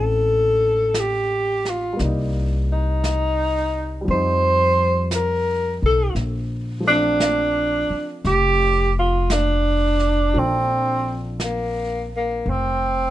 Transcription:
Already playing: upright bass A1, grand piano A3 C4 F4 D5, tenor saxophone A4
0.94 brush sweep, snare, hi-hat pedal
1.00 tenor saxophone G4
1.65 snare
1.70 tenor saxophone F4
1.93 grand piano G3 A#3
1.99 upright bass C2, grand piano D5, brush sweep, snare
2.04 grand piano D#4
2.72 tenor saxophone D#4
3.04 brush sweep, snare, hi-hat pedal
4.01 grand piano F3 G3
4.07 upright bass F2, grand piano C4, tenor saxophone C5, brush sweep
4.12 grand piano D#4
5.11 brush sweep, snare, hi-hat pedal
5.15 tenor saxophone A#4
5.82 upright bass B1, tenor saxophone A4
6.15 upright bass A#1, brush sweep, snare
6.80 grand piano F3 A3
6.88 grand piano C4, tenor saxophone D4
6.92 grand piano D4
7.20 brush sweep, snare, hi-hat pedal
7.90 muted upright bass stroke
8.25 upright bass F1, tenor saxophone G4, brush sweep, snare
8.99 tenor saxophone F4
9.30 tenor saxophone D4, brush sweep, snare, hi-hat pedal
9.99 snare
10.34 upright bass A#1, grand piano F3 C4 A4, brush sweep
10.38 tenor saxophone C4, grand piano D4
11.40 brush sweep, snare, hi-hat pedal
11.44 tenor saxophone A#3
12.17 tenor saxophone A#3
12.45 upright bass F1, brush sweep
12.50 tenor saxophone C4

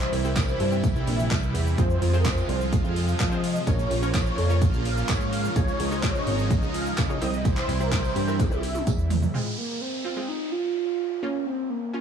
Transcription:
Already playing: supersaw synth C3 E3 G3 E4 C5, synth pluck C4 G4
0.01 clap, tambourine, shaker
0.13 analog synth bass C2, open hi-hat, tambourine, shaker
0.24 synth pluck C4 E4 G4 C5, supersaw synth A#4, tambourine, shaker
0.36 supersaw synth C5, kick, snare, clap, closed hi-hat, tambourine, shaker
0.48 tambourine, shaker
0.60 analog synth bass G2, supersaw synth C5, open hi-hat, shaker
0.72 synth pluck C4 E4 G4 C5, shaker
0.83 kick, closed hi-hat, tambourine, shaker
0.95 analog synth bass C2, shaker
1.07 analog synth bass A#1, supersaw synth E5, open hi-hat, tambourine, shaker
1.19 shaker
1.31 analog synth bass C2, kick, snare, clap, closed hi-hat, tambourine, shaker
1.43 shaker
1.54 analog synth bass E2, open hi-hat, tambourine, shaker
1.67 shaker
1.78 analog synth bass F2, supersaw synth F3 G#3 F4 C5, synth pluck C4 F4 G#4 C5, kick, closed hi-hat, tambourine, shaker
1.90 shaker
2.02 analog synth bass F2, open hi-hat, tambourine, shaker
2.13 synth pluck C4 F4 G#4 C5, supersaw synth A#4, tambourine, shaker
2.25 supersaw synth C5, kick, snare, clap, closed hi-hat, tambourine, shaker
2.37 tambourine, shaker
2.49 analog synth bass C2, supersaw synth C5, open hi-hat, shaker
2.61 tambourine, shaker
2.72 kick, closed hi-hat, tambourine, shaker
2.84 analog synth bass F2, shaker
2.96 supersaw synth F5, open hi-hat, tambourine, shaker
3.08 tambourine, shaker
3.20 analog synth bass F3, supersaw synth D#5, kick, snare, clap, closed hi-hat, tambourine, shaker
3.31 synth pluck C4 F4 G#4 C5, shaker
3.44 supersaw synth D#5, open hi-hat, tambourine, shaker
3.56 shaker
3.67 analog synth bass A#1, supersaw synth C#3 A#3 F4 C#5, synth pluck C#4 F4 A#4 C#5, kick, closed hi-hat, tambourine, shaker
3.79 tambourine, shaker
3.91 analog synth bass A#1, open hi-hat, tambourine, shaker
4.02 synth pluck C#4 F4 A#4 C#5, supersaw synth C5, shaker
4.14 supersaw synth C#5, kick, snare, clap, closed hi-hat, tambourine, shaker
4.26 tambourine, shaker
4.38 analog synth bass F2, supersaw synth C#5, open hi-hat, shaker
4.50 synth pluck C#4 F4 A#4 C#5, shaker
4.62 kick, closed hi-hat, tambourine, shaker
4.74 analog synth bass A#1, shaker
4.85 supersaw synth F5, open hi-hat, tambourine, shaker
4.97 tambourine, shaker
5.09 analog synth bass G#2, supersaw synth C#5, kick, snare, clap, closed hi-hat, tambourine, shaker
5.21 shaker
5.32 supersaw synth F5, open hi-hat, tambourine, shaker
5.45 shaker
5.56 analog synth bass C#2, supersaw synth F3 G#3 D#4 C#5, synth pluck D#4 F4 G#4 C#5, kick, closed hi-hat, tambourine, shaker
5.68 tambourine, shaker
5.80 analog synth bass C#2, open hi-hat, tambourine, shaker
5.91 synth pluck D#4 F4 G#4 C#5, supersaw synth C5, shaker
6.03 supersaw synth C#5, kick, snare, clap, closed hi-hat, tambourine, shaker
6.15 tambourine, shaker
6.27 analog synth bass G#1, supersaw synth C#5, open hi-hat, shaker
6.39 tambourine, shaker
6.50 kick, closed hi-hat, tambourine, shaker
6.62 analog synth bass C#2, shaker
6.74 supersaw synth F5, open hi-hat, tambourine, shaker
6.86 shaker
6.98 analog synth bass C#3, supersaw synth D#5, kick, snare, clap, closed hi-hat, tambourine, shaker
7.10 synth pluck D#4 F4 G#4 C#5, shaker
7.21 analog synth bass C2, supersaw synth C3 E3 G3 E4 D#5, synth pluck C4 E4 G4 C5, open hi-hat, tambourine, shaker
7.34 shaker
7.45 supersaw synth C5, kick, closed hi-hat, tambourine, shaker
7.57 clap, tambourine, shaker
7.69 analog synth bass C2, open hi-hat, tambourine, shaker
7.80 synth pluck C4 E4 G4 C5, supersaw synth A#4, shaker
7.92 supersaw synth C5, kick, snare, clap, closed hi-hat, tambourine, shaker
8.04 tambourine, shaker
8.16 analog synth bass G2, supersaw synth C5, open hi-hat, shaker
8.27 synth pluck C4 E4 G4 A#4, shaker
8.39 kick, closed hi-hat, high tom, tambourine, shaker
8.51 analog synth bass C2, high tom, shaker
8.63 supersaw synth E5, open hi-hat, tambourine, shaker
8.75 mid tom, tambourine, shaker
8.87 analog synth bass E2, kick, closed hi-hat, tambourine, shaker
8.99 shaker
9.10 floor tom, open hi-hat, tambourine, shaker
9.22 floor tom, shaker
9.34 synth pluck G#3 C4 F4, soft synth lead G#3, downlifter
9.58 soft synth lead A#3
9.81 soft synth lead C4
10.05 synth pluck C4 F4, soft synth lead C4
10.17 synth pluck G#3 C4 F4
10.28 soft synth lead D#4
10.52 soft synth lead F4
11.23 synth pluck A#3 C#4 F4, soft synth lead C#4
11.46 soft synth lead C4
11.70 soft synth lead A#3
11.94 synth pluck C#4 F4

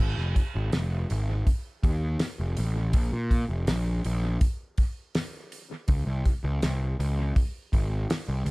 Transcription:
0.00 picked electric bass G#1
0.17 picked electric bass F1, snare
0.36 kick, open hi-hat
0.55 picked electric bass G#1
0.73 picked electric bass F1, snare, open hi-hat
1.10 picked electric bass G#1, open hi-hat
1.47 kick, open hi-hat
1.83 picked electric bass D#2, kick, open hi-hat
2.19 snare, open hi-hat
2.39 picked electric bass F1
2.57 picked electric bass A1, open hi-hat
2.93 picked electric bass A#1, kick, open hi-hat
3.13 picked electric bass A#2
3.31 kick, open hi-hat
3.49 picked electric bass F1
3.67 picked electric bass A#1, snare, open hi-hat
4.05 picked electric bass A#1, open hi-hat
4.41 kick, open hi-hat
4.78 kick, open hi-hat
5.15 snare, open hi-hat
5.52 open hi-hat
5.88 picked electric bass C#2, kick, open hi-hat
6.06 picked electric bass C2
6.25 kick, open hi-hat
6.44 picked electric bass C#2
6.62 picked electric bass C2, snare, open hi-hat
6.99 picked electric bass C#2, open hi-hat
7.36 kick, open hi-hat
7.73 picked electric bass G#1, kick, open hi-hat
8.10 snare, open hi-hat
8.28 picked electric bass C2
8.46 picked electric bass C#2, open hi-hat

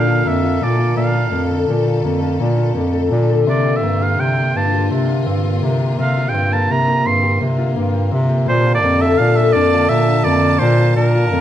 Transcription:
Already playing: bass clarinet A#2, string section D3 A#3 A4, harp A#3 C4 D4 G4, oboe F5
0.07 harp F4
0.25 bass clarinet F2, harp A#3, oboe E5
0.43 harp F4
0.61 bass clarinet A#2, harp A#3, oboe D5
0.79 harp F4
0.95 bass clarinet A#2, string section A3, harp A#3, oboe F5
1.14 harp F4
1.32 bass clarinet F2, harp A#3
1.51 harp A4
1.68 bass clarinet A#2, harp A#3
1.87 harp F4
2.04 bass clarinet F2, harp A#3
2.22 harp F4
2.39 bass clarinet A#2, harp A#3
2.58 harp F4
2.75 bass clarinet F2, harp A#3
2.93 harp A4
3.10 bass clarinet A#2, harp D4
3.29 harp A4
3.46 bass clarinet C3, string section A#3 F4, harp C4, oboe D5
3.65 harp G4
3.76 oboe E5
3.83 bass clarinet G2, harp A#3
4.01 harp G4, oboe F5
4.18 bass clarinet C3, harp C4, oboe G5
4.37 harp G4
4.55 bass clarinet G2, harp D4, oboe A5
4.73 harp G4
4.91 bass clarinet C3, harp C4
5.09 harp F4
5.26 bass clarinet G2, harp C4
5.44 harp G4
5.62 bass clarinet C3, harp A#3
5.81 harp G4
5.98 bass clarinet C3, harp C4, oboe F5
6.17 harp F4
6.29 oboe G5
6.34 bass clarinet G2, harp C4
6.52 harp A#4, oboe A5
6.70 bass clarinet C3, harp C4, oboe A#5
6.88 harp G4
7.06 bass clarinet G2, harp C4, oboe C6
7.23 harp G4
7.41 bass clarinet C3, harp C4
7.58 harp F4
7.76 bass clarinet G2, harp A#3
7.94 harp G4
8.11 bass clarinet C3, harp C4
8.29 harp G4
8.45 bass clarinet A#2, string section D3 A5, harp A#3, oboe C5
8.66 harp F4
8.75 oboe D5
8.83 bass clarinet F2, harp A#3
9.01 harp A4, oboe E5
9.18 bass clarinet A#2, harp D4, oboe F5
9.36 harp A4, oboe E5
9.53 bass clarinet F2, harp D4, oboe D5
9.73 harp F4
9.89 bass clarinet A#2, harp A#3, oboe E5
10.08 harp F4
10.24 bass clarinet F2, harp A#3, oboe D5
10.43 harp F4
10.59 bass clarinet A#2, harp A#3, oboe C5
10.79 harp F4
10.96 bass clarinet A#2, harp A#3, oboe A#4
11.15 harp F4
11.32 bass clarinet F2, harp A#3

